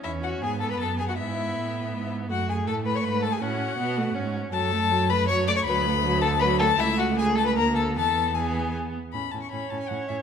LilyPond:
<<
  \new Staff \with { instrumentName = "Violin" } { \time 3/4 \key e \major \tempo 4 = 159 e''8 fis''8 gis''8 a''16 b''16 a''8 gis''16 fis''16 | e''2~ e''8 r8 | fis''8 gis''8 a''8 b''16 cis'''16 b''8 a''16 gis''16 | fis''2~ fis''8 r8 |
\key a \major a''4. b''8 cis'''8 d'''16 cis'''16 | b''4. a''8 b''8 a''8 | e''8 fis''8 gis''8 a''16 b''16 bes''8 a''8 | a''4 gis''4 r4 |
b''8 a''16 cis'''16 b''8 a''16 gis''16 fis''8 e''8 | }
  \new Staff \with { instrumentName = "Violin" } { \time 3/4 \key e \major e'8 fis'8 gis'8 a'16 b'16 a'8 gis'16 fis'16 | e'2~ e'8 r8 | fis'8 gis'8 a'8 b'16 cis''16 b'8 a'16 gis'16 | fis'2~ fis'8 r8 |
\key a \major a'4. b'8 cis''8 d''16 cis''16 | b'4. a'8 b'8 a'8 | e'8 fis'8 gis'8 a'16 b'16 bes'8 a'8 | a'4 gis'4 r4 |
cis'8 cis'8 cis'8 cis'8 cis'8 cis'8 | }
  \new Staff \with { instrumentName = "Viola" } { \time 3/4 \key e \major cis'4 b2 | b2. | a2. | cis'4 b8 a8 cis'4 |
\key a \major fis8 a8 fis8 a8 fis8 a8 | fis8 a8 fis8 a8 fis8 a8 | a2 bes4 | b4 b4. r8 |
r4 cis''2 | }
  \new Staff \with { instrumentName = "Cello" } { \clef bass \time 3/4 \key e \major e,4 gis,4 fis,4 | gis,4 a,4 gis,4 | fis,4 a,4 gis,4 | a,4 b,4 gis,4 |
\key a \major fis,2. | d,2. | cis,2 d,4 | e,2~ e,8 r8 |
a,8 a,8 a,8 a,8 a,8 a,8 | }
>>